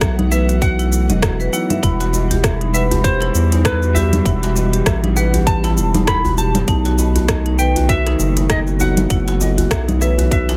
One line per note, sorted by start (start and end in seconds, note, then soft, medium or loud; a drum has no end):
0.00 1.11 B1 loud
0.00 6.64 E3 medium
0.00 0.27 F#3 medium
0.00 1.79 A3 medium
0.00 0.28 B3 medium
0.00 0.29 E4 medium
0.00 0.18 E5 medium
0.00 0.27 F#5 loud
0.00 1.79 F#5 medium
0.00 kick loud
0.00 cross-stick loud
0.00 closed hi-hat soft
0.00 shaker soft
0.19 0.31 D#4 medium
0.19 closed hi-hat soft
0.19 low conga medium
0.30 0.89 E3 medium
0.30 0.88 F#3 medium
0.30 0.89 B3 medium
0.30 0.48 B4 loud
0.30 0.63 E5 medium
0.30 cross-stick soft
0.30 shaker medium
0.49 0.60 F#4 medium
0.49 closed hi-hat soft
0.49 shaker soft
0.62 0.77 F#4 loud
0.62 1.52 F#5 loud
0.62 kick loud
0.62 closed hi-hat medium
0.62 shaker soft
0.79 0.91 E4 medium
0.79 closed hi-hat soft
0.79 shaker soft
0.92 1.08 E4 medium
0.92 shaker medium
1.09 1.49 E1 loud
1.09 1.22 D#5 medium
1.09 closed hi-hat soft
1.09 low conga medium
1.09 shaker soft
1.22 1.38 F#4 medium
1.22 kick loud
1.22 cross-stick loud
1.22 closed hi-hat medium
1.22 shaker soft
1.40 1.52 B4 loud
1.40 shaker soft
1.52 1.71 F#3 medium
1.52 1.72 B3 medium
1.52 1.72 D#4 loud
1.52 1.69 E4 loud
1.52 2.40 F#5 medium
1.52 shaker medium
1.70 1.77 E5 medium
1.70 closed hi-hat soft
1.70 low conga medium
1.70 shaker soft
1.81 3.31 E1 loud
1.81 9.06 B2 medium
1.81 2.70 G3 medium
1.81 6.64 G3 medium
1.81 1.99 E4 loud
1.81 2.71 E4 medium
1.81 10.57 B5 medium
1.81 kick loud
1.81 closed hi-hat soft
1.81 shaker soft
1.85 2.72 F#5 medium
2.00 2.13 F#4 medium
2.00 closed hi-hat soft
2.00 djembe slap medium
2.00 shaker soft
2.13 2.29 D#5 medium
2.13 djembe tone medium
2.13 shaker medium
2.31 2.43 G4 medium
2.31 closed hi-hat soft
2.31 djembe bass medium
2.31 shaker soft
2.44 2.60 E5 medium
2.44 kick loud
2.44 cross-stick medium
2.44 closed hi-hat medium
2.44 shaker soft
2.61 2.73 D#4 medium
2.61 closed hi-hat soft
2.72 3.92 E3 medium
2.72 3.91 G3 medium
2.72 2.90 B4 loud
2.72 2.82 E5 loud
2.72 3.93 F#5 medium
2.72 shaker medium
2.91 3.03 G4 medium
2.91 closed hi-hat soft
2.91 djembe bass medium
2.91 shaker soft
3.04 3.20 G4 loud
3.04 3.65 C5 loud
3.04 kick loud
3.04 closed hi-hat medium
3.04 djembe slap soft
3.04 shaker soft
3.20 3.33 E4 medium
3.20 cross-stick soft
3.20 closed hi-hat soft
3.20 djembe slap medium
3.35 4.22 E2 medium
3.35 3.51 E4 medium
3.35 shaker medium
3.52 3.64 D#4 medium
3.52 closed hi-hat soft
3.52 djembe tone medium
3.52 shaker soft
3.65 3.82 E4 medium
3.65 3.96 B4 medium
3.65 kick loud
3.65 cross-stick loud
3.65 closed hi-hat medium
3.65 shaker soft
3.82 3.95 F#4 medium
3.82 shaker soft
3.94 4.22 G3 loud
3.94 4.22 E4 medium
3.94 4.23 F#4 loud
3.94 4.11 G4 loud
3.94 4.82 E5 medium
3.94 djembe bass medium
3.94 shaker medium
4.13 4.24 G4 medium
4.13 closed hi-hat soft
4.13 djembe tone medium
4.13 low conga medium
4.13 shaker soft
4.24 4.82 E1 medium
4.24 5.13 E3 medium
4.24 5.12 G3 medium
4.24 4.41 E4 loud
4.24 kick loud
4.24 closed hi-hat medium
4.24 shaker soft
4.28 5.14 F#5 medium
4.43 4.55 F#4 loud
4.43 closed hi-hat soft
4.43 djembe slap medium
4.43 shaker soft
4.56 4.71 D#5 medium
4.56 djembe tone medium
4.56 shaker medium
4.73 4.85 G4 medium
4.73 closed hi-hat soft
4.73 shaker soft
4.86 5.78 A1 loud
4.86 5.03 E5 medium
4.86 kick loud
4.86 cross-stick medium
4.86 closed hi-hat medium
4.86 shaker soft
5.04 5.16 D#4 medium
5.04 closed hi-hat soft
5.04 low conga medium
5.16 5.74 E3 medium
5.16 5.73 G3 medium
5.16 5.33 B4 loud
5.16 5.48 F#5 medium
5.16 5.74 F#5 medium
5.16 cross-stick soft
5.16 shaker medium
5.34 5.45 G4 medium
5.34 closed hi-hat soft
5.34 djembe bass medium
5.34 shaker soft
5.47 5.62 G4 medium
5.47 6.08 A5 loud
5.47 kick loud
5.47 closed hi-hat medium
5.47 shaker soft
5.64 5.76 E4 loud
5.64 closed hi-hat soft
5.64 djembe slap medium
5.64 djembe tone medium
5.64 shaker soft
5.75 6.64 E1 loud
5.75 6.65 E3 medium
5.75 6.64 G3 medium
5.75 5.94 E4 medium
5.75 shaker medium
5.94 6.07 D#4 medium
5.94 closed hi-hat soft
5.94 djembe tone medium
5.94 low conga medium
5.94 shaker soft
6.07 6.24 E4 medium
6.07 6.38 B5 loud
6.07 kick loud
6.07 cross-stick loud
6.07 closed hi-hat medium
6.07 shaker soft
6.25 6.37 F#4 medium
6.25 djembe bass medium
6.25 shaker soft
6.38 6.53 G4 loud
6.38 7.25 A5 medium
6.38 djembe tone soft
6.38 shaker medium
6.55 6.67 G4 medium
6.55 closed hi-hat soft
6.55 djembe slap medium
6.55 low conga medium
6.55 shaker soft
6.66 8.15 B1 loud
6.66 9.08 D#3 medium
6.66 7.55 F#3 medium
6.66 10.57 A3 medium
6.66 7.56 B3 medium
6.66 6.84 D#4 loud
6.66 7.57 D#4 loud
6.66 kick loud
6.66 closed hi-hat medium
6.66 shaker soft
6.85 6.98 F#4 loud
6.85 closed hi-hat soft
6.85 djembe slap medium
6.85 shaker soft
6.98 7.14 D#5 medium
6.98 djembe tone medium
6.98 shaker medium
7.16 7.28 F#4 medium
7.16 closed hi-hat soft
7.16 djembe bass medium
7.16 shaker soft
7.28 7.45 D#5 medium
7.28 kick loud
7.28 cross-stick loud
7.28 closed hi-hat medium
7.28 shaker soft
7.46 7.58 D#4 medium
7.46 closed hi-hat soft
7.57 8.78 D#3 medium
7.57 8.76 F#3 medium
7.57 8.77 B3 medium
7.57 7.75 B4 loud
7.57 7.90 G5 loud
7.57 shaker medium
7.76 7.88 F#4 medium
7.76 closed hi-hat soft
7.76 djembe bass medium
7.76 shaker soft
7.89 8.05 F#4 loud
7.89 8.50 E5 loud
7.89 kick loud
7.89 closed hi-hat medium
7.89 djembe slap soft
7.89 shaker soft
8.06 8.18 D#4 loud
8.06 cross-stick soft
8.06 closed hi-hat soft
8.06 djembe slap medium
8.19 9.06 F#1 loud
8.19 8.36 D#4 medium
8.19 shaker medium
8.37 8.49 D#4 medium
8.37 closed hi-hat soft
8.37 djembe tone medium
8.37 shaker soft
8.50 8.59 D#5 medium
8.50 kick loud
8.50 cross-stick loud
8.50 closed hi-hat medium
8.50 shaker soft
8.67 8.79 F#4 medium
8.67 shaker soft
8.79 9.07 F#3 loud
8.79 9.07 B3 medium
8.79 9.08 D#4 loud
8.79 8.96 F#4 loud
8.79 10.05 F#5 loud
8.79 djembe bass medium
8.79 shaker medium
8.97 9.09 F#4 medium
8.97 closed hi-hat medium
8.97 djembe tone medium
8.97 low conga medium
8.97 shaker soft
9.09 9.67 F#1 loud
9.09 10.57 E3 medium
9.09 9.97 F#3 medium
9.09 9.98 B3 medium
9.09 9.26 E4 loud
9.09 kick loud
9.09 closed hi-hat medium
9.09 shaker soft
9.13 9.99 E4 medium
9.28 9.40 F#4 loud
9.28 closed hi-hat soft
9.28 djembe slap medium
9.28 shaker soft
9.40 9.56 D#5 medium
9.40 djembe tone medium
9.40 shaker medium
9.58 9.70 F#4 medium
9.58 closed hi-hat soft
9.58 djembe bass medium
9.58 shaker soft
9.71 10.57 B1 loud
9.71 9.87 E5 medium
9.71 kick loud
9.71 cross-stick loud
9.71 closed hi-hat medium
9.71 shaker soft
9.88 10.01 D#4 medium
9.88 closed hi-hat soft
9.88 low conga medium
9.88 shaker soft
10.01 10.57 E3 loud
10.01 10.57 F#3 medium
10.01 10.57 B3 medium
10.01 10.18 B4 loud
10.01 10.32 E5 medium
10.01 cross-stick soft
10.01 shaker medium
10.18 10.30 F#4 medium
10.18 closed hi-hat soft
10.18 djembe bass medium
10.18 shaker soft
10.31 10.47 F#4 loud
10.31 10.57 E5 medium
10.31 kick loud
10.31 closed hi-hat medium
10.31 shaker soft
10.49 10.57 E4 loud
10.49 closed hi-hat soft
10.49 djembe slap medium
10.49 djembe tone medium
10.49 shaker soft